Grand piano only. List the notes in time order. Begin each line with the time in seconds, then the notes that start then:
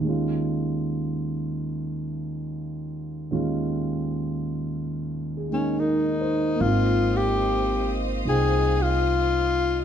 Already playing: D#2
0.01 D#3 G#3
0.07 C#4 F4
3.31 D#2 D#3 G#3 C#4 F4
5.37 G#4
5.50 G#3 A#3 D#4
5.80 A#4
6.21 C5
6.56 A#3 C4
6.63 D#4 F4
8.26 D#4 F4 G5